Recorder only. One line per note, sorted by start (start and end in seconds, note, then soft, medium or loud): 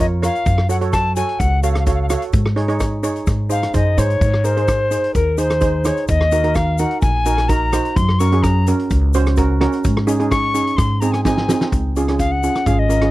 0.00 0.06 D#5 medium
0.25 0.67 F5 medium
0.71 0.77 F#5 medium
0.93 1.15 A5 loud
1.16 1.41 G#5 medium
1.39 1.63 F#5 loud
1.63 1.71 F5 medium
1.72 1.78 F5 medium
1.79 1.86 F5 medium
1.87 1.94 F5 medium
1.94 2.01 F5 medium
2.02 2.09 F5 medium
2.09 2.16 F5 medium
2.17 2.24 F5 medium
3.51 3.73 F5 medium
3.75 4.00 D#5 medium
3.98 4.46 C#5 medium
4.45 5.14 C5 medium
5.15 5.39 A#4 medium
5.38 5.87 C5 medium
5.85 6.08 C#5 medium
6.09 6.57 D#5 medium
6.55 6.80 F5 medium
6.79 7.01 F#5 loud
7.01 7.50 G#5 loud
7.49 7.97 A#5 loud
7.96 8.21 C6 loud
8.19 8.44 C#6 loud
8.43 8.66 A#5 medium
10.31 10.78 C#6 loud
10.77 11.02 C6 loud
11.00 11.13 A#5 medium
11.12 11.23 G#5 medium
11.24 11.68 G#5 medium
12.19 12.33 F5 loud
12.32 12.68 F#5 loud
12.67 12.81 F5 loud
12.79 13.11 D#5 medium